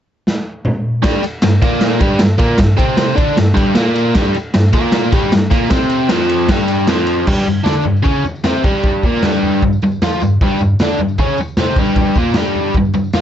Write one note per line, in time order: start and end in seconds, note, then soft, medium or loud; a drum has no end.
0.26 snare medium
0.64 mid tom medium
1.02 1.22 G2 medium
1.02 1.23 G3 medium
1.02 kick loud
1.02 snare loud
1.02 ride medium
1.02 tambourine medium
1.23 muted overdriven electric guitar stroke medium
1.23 ride medium
1.23 tambourine medium
1.42 1.59 G2 medium
1.42 snare loud
1.42 ride loud
1.42 tambourine medium
1.62 2.01 A#2 loud
1.62 2.02 A#3 medium
1.62 kick loud
1.62 ride medium
1.81 snare loud
1.81 ride loud
1.81 tambourine soft
2.00 2.20 G2 medium
2.00 2.21 G3 loud
2.00 kick loud
2.00 ride medium
2.00 tambourine medium
2.19 2.37 G2 medium
2.19 snare loud
2.19 ride loud
2.19 tambourine loud
2.38 2.59 A#2 medium
2.38 2.59 A#3 loud
2.38 kick loud
2.38 ride medium
2.38 tambourine medium
2.58 2.75 G2 medium
2.58 kick loud
2.58 snare loud
2.58 ride loud
2.58 tambourine medium
2.77 3.15 C3 medium
2.77 3.16 C4 loud
2.77 kick loud
2.77 ride medium
2.77 tambourine medium
2.97 snare loud
2.97 ride loud
2.97 tambourine medium
3.09 tambourine soft
3.16 3.36 D3 medium
3.16 3.37 D4 medium
3.16 kick loud
3.16 ride medium
3.36 3.53 G2 medium
3.36 snare loud
3.36 ride loud
3.36 tambourine soft
3.54 3.75 G2 loud
3.54 3.76 G3 medium
3.54 kick loud
3.54 ride medium
3.54 tambourine medium
3.75 4.14 A#2 medium
3.75 4.14 A#3 medium
3.75 snare loud
3.75 ride medium
3.75 tambourine loud
3.96 ride medium
3.96 tambourine medium
4.15 4.34 G2 medium
4.15 4.35 G3 loud
4.15 kick loud
4.15 snare loud
4.15 ride medium
4.15 tambourine medium
4.34 muted overdriven electric guitar stroke medium
4.34 ride medium
4.34 tambourine medium
4.54 4.70 G2 medium
4.54 snare loud
4.54 ride loud
4.54 tambourine medium
4.66 tambourine soft
4.73 5.12 A#2 medium
4.73 5.13 A#3 loud
4.73 kick loud
4.73 ride medium
4.92 snare loud
4.92 ride loud
4.92 tambourine soft
5.12 5.31 G2 loud
5.12 5.32 G3 loud
5.12 kick loud
5.12 ride medium
5.12 tambourine medium
5.32 5.48 G2 medium
5.32 snare loud
5.32 ride loud
5.32 tambourine medium
5.51 5.69 A#2 medium
5.51 5.70 A#3 medium
5.51 kick loud
5.51 ride medium
5.51 tambourine medium
5.70 6.09 C3 medium
5.70 6.10 C4 medium
5.70 kick loud
5.70 snare loud
5.70 ride loud
5.70 tambourine medium
5.90 ride medium
5.90 tambourine medium
6.09 6.48 F2 medium
6.09 6.48 F3 loud
6.09 snare loud
6.09 ride loud
6.09 tambourine medium
6.29 ride medium
6.40 tambourine soft
6.49 6.88 G2 medium
6.49 6.89 G3 medium
6.49 kick medium
6.49 snare loud
6.49 ride loud
6.68 ride medium
6.68 tambourine medium
6.80 tambourine soft
6.88 7.27 F2 medium
6.88 7.27 F3 medium
6.88 snare loud
6.88 ride medium
6.88 tambourine loud
7.07 ride medium
7.07 tambourine medium
7.17 tambourine soft
7.27 7.44 G2 medium
7.27 7.47 G3 loud
7.27 kick loud
7.27 floor tom medium
7.27 crash loud
7.37 tambourine soft
7.45 7.62 G2 medium
7.45 floor tom medium
7.45 tambourine medium
7.64 7.84 D3 medium
7.64 7.84 D4 loud
7.64 snare loud
7.64 floor tom medium
7.64 tambourine medium
7.84 8.01 G2 medium
7.84 floor tom medium
7.96 tambourine soft
8.03 8.23 C#3 medium
8.03 8.24 C#4 loud
8.03 kick medium
8.03 floor tom medium
8.16 tambourine soft
8.24 muted overdriven electric guitar stroke medium
8.24 floor tom medium
8.24 tambourine medium
8.35 tambourine soft
8.44 8.63 C3 medium
8.44 8.64 C4 medium
8.44 snare loud
8.44 floor tom medium
8.44 tambourine medium
8.63 9.02 G2 medium
8.63 9.03 G3 loud
8.63 kick loud
8.63 floor tom medium
8.63 tambourine medium
8.83 kick loud
8.83 floor tom medium
8.95 tambourine soft
9.03 9.23 A#2 medium
9.03 9.23 A#3 loud
9.03 kick medium
9.03 floor tom medium
9.03 tambourine medium
9.23 9.62 G2 medium
9.23 9.63 G3 medium
9.23 snare loud
9.23 floor tom medium
9.23 tambourine medium
9.34 tambourine medium
9.43 floor tom medium
9.54 tambourine soft
9.62 9.78 G2 medium
9.62 kick medium
9.62 floor tom medium
9.73 tambourine soft
9.82 9.98 G2 medium
9.82 floor tom medium
9.82 tambourine medium
9.92 tambourine soft
10.02 10.21 F3 medium
10.02 10.21 F4 loud
10.02 snare loud
10.02 floor tom medium
10.02 tambourine medium
10.11 tambourine soft
10.21 10.37 G2 medium
10.21 floor tom medium
10.21 tambourine medium
10.41 10.59 G2 medium
10.41 10.61 G3 loud
10.41 kick loud
10.41 floor tom medium
10.50 tambourine soft
10.59 10.76 G2 medium
10.59 floor tom medium
10.59 tambourine medium
10.79 11.00 D3 medium
10.79 11.00 D4 loud
10.79 snare loud
10.79 floor tom medium
10.79 tambourine medium
10.89 tambourine medium
10.99 11.15 G2 medium
10.99 floor tom medium
11.08 tambourine soft
11.18 11.38 C#3 medium
11.18 11.38 C#4 medium
11.18 kick loud
11.18 floor tom medium
11.27 tambourine soft
11.37 muted overdriven electric guitar stroke medium
11.37 floor tom medium
11.37 tambourine medium
11.57 11.77 C3 medium
11.57 11.78 C4 loud
11.57 snare loud
11.57 floor tom medium
11.57 tambourine medium
11.75 12.16 G2 medium
11.75 12.16 G3 loud
11.75 kick loud
11.75 floor tom medium
11.75 tambourine medium
11.95 kick loud
11.95 floor tom medium
11.95 tambourine soft
12.06 tambourine soft
12.15 12.36 A#2 medium
12.15 12.36 A#3 medium
12.15 kick medium
12.15 floor tom medium
12.15 tambourine medium
12.34 12.75 G2 medium
12.34 12.75 G3 loud
12.34 snare loud
12.34 floor tom medium
12.34 tambourine medium
12.45 tambourine medium
12.55 floor tom medium
12.65 tambourine soft
12.74 12.91 G2 medium
12.74 kick medium
12.74 floor tom medium
12.85 tambourine soft
12.94 13.10 G2 medium
12.94 floor tom medium
12.94 tambourine medium
13.04 tambourine soft
13.13 13.21 F3 medium
13.13 13.21 F4 medium
13.13 snare loud
13.13 floor tom medium
13.13 tambourine medium